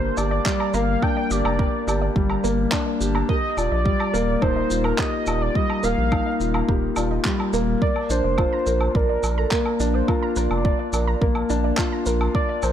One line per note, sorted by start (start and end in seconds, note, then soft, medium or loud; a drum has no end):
0.00 0.12 G1 medium
0.00 0.46 G3 loud
0.00 0.74 A#3 loud
0.00 1.03 D4 medium
0.00 0.18 G4 medium
0.00 0.16 A#4 medium
0.00 0.19 C5 medium
0.17 0.40 G1 medium
0.17 0.44 G4 medium
0.17 0.76 D5 loud
0.17 0.24 D5 medium
0.17 low woodblock medium
0.17 shaker medium
0.31 0.41 D5 medium
0.46 0.73 G3 loud
0.46 kick loud
0.46 clap medium
0.60 0.69 A#5 loud
0.60 low woodblock medium
0.74 0.96 G1 loud
0.74 1.01 A#3 loud
0.74 0.80 A#4 loud
0.74 1.04 F5 loud
0.74 shaker medium
1.02 1.19 D4 loud
1.02 1.09 D5 medium
1.02 1.33 G5 loud
1.02 kick loud
1.02 low woodblock medium
1.17 1.26 D5 medium
1.31 1.42 G1 loud
1.31 1.58 G4 medium
1.31 2.16 D5 loud
1.31 shaker medium
1.45 1.67 F1 medium
1.45 1.54 A#5 loud
1.45 low woodblock medium
1.59 1.65 A#4 loud
1.59 1.86 A#4 medium
1.59 kick loud
1.87 2.10 G1 medium
1.87 2.14 G4 medium
1.87 1.94 D5 medium
1.87 low woodblock medium
1.87 shaker medium
2.02 2.11 D5 medium
2.16 2.38 G1 medium
2.16 2.43 G3 loud
2.16 kick loud
2.30 2.39 A#5 loud
2.30 low woodblock medium
2.44 2.67 G1 medium
2.44 2.71 A#3 loud
2.44 2.50 A#4 loud
2.44 shaker medium
2.72 2.88 D4 loud
2.72 2.79 D5 medium
2.72 kick loud
2.72 clap medium
2.72 low woodblock medium
2.86 2.96 D5 medium
3.00 3.23 G1 loud
3.00 3.27 G4 medium
3.00 shaker medium
3.15 3.24 A#5 medium
3.15 low woodblock medium
3.29 3.56 G4 medium
3.29 3.35 A#4 loud
3.29 3.59 D#5 loud
3.29 kick loud
3.57 3.69 D#1 loud
3.57 3.84 F4 medium
3.57 3.63 D5 medium
3.57 4.43 D5 loud
3.57 low woodblock medium
3.57 shaker medium
3.71 3.94 A#1 medium
3.71 3.81 D#5 medium
3.85 4.12 G3 loud
3.85 kick loud
4.00 4.09 A#5 loud
4.00 low woodblock medium
4.14 4.36 D#1 loud
4.14 4.41 A#3 loud
4.14 4.20 A#4 loud
4.14 shaker medium
4.42 4.65 D#1 medium
4.42 4.58 D#4 loud
4.42 4.86 C5 loud
4.42 4.48 D5 medium
4.42 kick loud
4.42 low woodblock medium
4.56 4.66 D#5 medium
4.70 4.93 D#1 medium
4.70 4.97 F4 medium
4.70 shaker medium
4.84 5.01 A#4 medium
4.84 4.94 A#5 medium
4.84 low woodblock medium
4.98 5.26 G4 medium
4.98 5.05 A#4 loud
4.98 5.43 D#5 loud
4.98 kick loud
4.98 clap medium
5.26 5.49 D#1 loud
5.26 5.54 F4 medium
5.26 5.33 D5 medium
5.26 low woodblock medium
5.26 shaker medium
5.41 5.57 D5 loud
5.41 5.51 D#5 medium
5.55 5.82 G3 loud
5.55 5.86 D#5 loud
5.55 kick loud
5.69 5.79 A#5 loud
5.69 low woodblock medium
5.83 5.95 D#1 loud
5.83 6.10 A#3 loud
5.83 5.90 A#4 loud
5.83 6.69 F5 loud
5.83 shaker medium
5.98 6.20 A#1 medium
6.12 6.28 D#4 medium
6.12 6.18 D5 medium
6.12 kick loud
6.12 low woodblock medium
6.26 6.36 D#5 medium
6.40 6.63 D#1 loud
6.40 6.67 F4 medium
6.40 shaker medium
6.54 6.64 A#5 medium
6.54 low woodblock medium
6.68 6.91 D#1 medium
6.68 6.95 G4 medium
6.68 6.75 A#4 loud
6.68 kick loud
6.96 7.19 D#1 medium
6.96 7.24 F4 medium
6.96 7.03 D5 medium
6.96 low woodblock medium
6.96 shaker medium
7.11 7.20 D#5 medium
7.25 7.52 G3 loud
7.25 kick medium
7.25 clap medium
7.39 7.49 A#5 medium
7.39 low woodblock medium
7.53 7.76 D#1 loud
7.53 7.80 A#3 loud
7.53 7.60 A#4 loud
7.53 shaker medium
7.82 8.09 A#3 medium
7.82 7.88 A#4 loud
7.82 8.08 D5 loud
7.82 kick loud
7.96 low woodblock medium
8.10 8.21 A#1 loud
8.10 8.37 D4 loud
8.10 8.97 C5 loud
8.10 8.16 D5 medium
8.10 shaker medium
8.24 8.47 F1 medium
8.24 8.34 D5 medium
8.38 8.54 F4 loud
8.38 kick loud
8.38 low woodblock medium
8.53 8.62 A#5 loud
8.66 8.89 A#1 loud
8.66 8.93 A#4 medium
8.66 8.73 A#4 loud
8.66 shaker medium
8.81 low woodblock medium
8.95 9.17 A#1 medium
8.95 9.40 A#4 loud
8.95 9.22 D5 medium
8.95 9.01 D5 medium
8.95 kick loud
9.09 9.19 D5 medium
9.23 9.46 A#1 medium
9.23 9.50 A#4 medium
9.23 low woodblock medium
9.23 shaker medium
9.38 9.54 A4 medium
9.38 9.47 A#5 loud
9.51 9.78 A#3 loud
9.51 9.58 A#4 loud
9.51 9.96 A#4 medium
9.51 kick loud
9.51 clap medium
9.66 low woodblock medium
9.80 10.02 A#1 loud
9.80 10.07 D4 loud
9.80 9.86 D5 medium
9.80 shaker medium
9.94 10.10 C5 loud
9.94 10.04 D5 medium
10.08 10.24 F4 loud
10.08 10.38 A#4 medium
10.08 kick loud
10.08 low woodblock medium
10.22 10.32 A#5 loud
10.36 10.48 A#1 loud
10.36 10.63 A#4 medium
10.36 10.43 A#4 loud
10.36 11.22 D5 loud
10.36 shaker medium
10.50 10.73 F1 medium
10.50 low woodblock medium
10.65 10.92 D5 medium
10.65 10.71 D5 medium
10.65 kick loud
10.79 10.89 D5 medium
10.93 11.15 A#1 medium
10.93 11.20 A#4 medium
10.93 low woodblock medium
10.93 shaker medium
11.07 11.17 A#5 medium
11.21 11.44 A#1 medium
11.21 11.48 A#3 loud
11.21 11.28 A#4 loud
11.21 kick loud
11.35 low woodblock medium
11.50 11.72 A#1 medium
11.50 11.77 D4 loud
11.50 11.56 D5 medium
11.50 shaker medium
11.64 11.73 D5 medium
11.77 11.94 F4 loud
11.77 kick loud
11.77 clap medium
11.77 low woodblock medium
11.92 12.02 A#5 loud
12.06 12.29 A#1 loud
12.06 12.13 A#4 loud
12.06 12.33 A#4 medium
12.06 shaker medium
12.21 low woodblock medium
12.35 12.62 D5 medium
12.35 12.41 D5 medium
12.35 12.65 D5 loud
12.35 kick loud
12.49 12.58 D5 medium
12.62 12.72 A#1 loud
12.62 12.72 A#4 medium
12.62 12.72 C5 loud
12.62 low woodblock medium
12.62 shaker medium